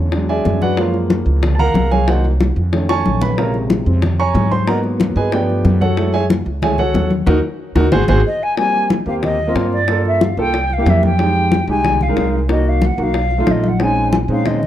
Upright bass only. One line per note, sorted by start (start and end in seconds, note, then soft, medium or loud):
0.00 0.42 E2 medium
0.46 1.21 F#2 medium
1.26 1.71 C#2 medium
1.74 2.50 C2 medium
2.56 3.02 F2 medium
3.06 3.81 A#1 medium
3.86 4.32 F2 medium
4.34 5.10 G#2 loud
5.16 5.61 G2 medium
5.65 6.41 F#2 medium
6.46 6.91 C#2 medium
6.94 7.25 D#2 loud
7.27 7.39 D#2 loud
7.75 7.88 D#2 medium
7.92 8.04 G#1 loud
8.08 8.21 G#1 loud
9.06 9.52 D#2 medium
9.55 10.31 G2 medium
10.37 10.83 C2 medium
10.86 11.62 F2 medium
11.68 12.13 C2 medium
12.17 12.93 C2 medium
12.98 13.44 B1 medium
13.47 14.23 A#1 medium
14.28 14.67 A#2 medium